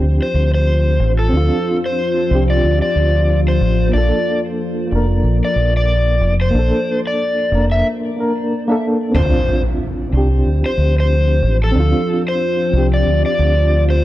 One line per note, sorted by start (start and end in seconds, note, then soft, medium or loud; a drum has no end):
0.00 0.18 D2 medium
0.00 7.84 F3 medium
0.00 1.29 C4 medium
0.00 1.33 D4 medium
0.00 1.37 F4 medium
0.00 7.84 F4 medium
0.00 1.31 G4 medium
0.22 0.50 C5 medium
0.34 0.97 D2 medium
0.54 1.12 C5 medium
1.00 1.29 A1 medium
1.19 1.76 A4 medium
1.29 1.49 D2 medium
1.29 2.25 C4 medium
1.33 2.27 D4 medium
1.33 2.29 F4 medium
1.86 2.42 C5 medium
2.27 3.88 C4 medium
2.31 2.60 C2 medium
2.31 3.90 D4 medium
2.31 3.92 G4 medium
2.50 2.78 D5 medium
2.63 2.80 D2 medium
2.82 3.39 D5 medium
2.96 3.58 D2 medium
3.48 3.90 C5 medium
3.61 3.90 A1 medium
3.89 4.86 A#3 medium
3.94 4.10 A#1 loud
3.94 4.88 D4 medium
3.94 4.39 D5 loud
3.98 4.90 A4 medium
4.87 6.49 A#3 medium
4.92 5.21 F1 medium
4.92 6.51 D4 medium
4.92 6.53 A#4 medium
5.24 5.40 A#1 medium
5.45 5.72 D5 medium
5.56 6.19 A#1 medium
5.77 6.34 D5 medium
6.21 6.50 F1 medium
6.42 6.99 C5 medium
6.51 6.70 A#1 loud
6.51 7.47 A#3 medium
6.55 7.49 D4 medium
6.55 7.51 A4 medium
7.07 7.64 D5 medium
7.51 7.81 F1 medium
7.51 8.14 A#3 medium
7.51 8.15 D4 medium
7.51 8.16 A#4 medium
7.72 7.85 E5 medium
8.16 8.64 A#3 medium
8.16 8.65 D4 medium
8.20 8.66 A#4 medium
8.68 9.11 A#3 medium
8.68 9.12 D4 medium
8.68 9.13 A4 medium
9.11 9.31 D2 medium
9.11 14.04 F3 medium
9.11 10.08 C4 medium
9.11 10.10 D4 medium
9.11 14.04 F4 medium
9.11 impact medium
9.16 10.12 F4 medium
9.16 9.61 C5 loud
10.09 10.42 C2 loud
10.09 11.71 C4 medium
10.14 11.73 D4 medium
10.14 11.75 G4 medium
10.45 10.62 D2 medium
10.66 10.94 C5 medium
10.78 11.40 D2 medium
11.00 11.56 C5 medium
11.43 11.72 A1 medium
11.64 12.21 A4 medium
11.72 11.92 D2 loud
11.72 12.68 C4 medium
11.72 12.70 D4 medium
11.80 12.72 F4 medium
12.28 12.85 C5 medium
12.70 13.03 C2 medium
12.70 14.04 C4 medium
12.70 14.04 D4 medium
12.77 14.04 G4 medium
12.94 13.22 D5 medium
13.06 13.23 D2 medium
13.26 13.83 D5 medium
13.39 14.02 D2 medium
13.90 14.04 C5 loud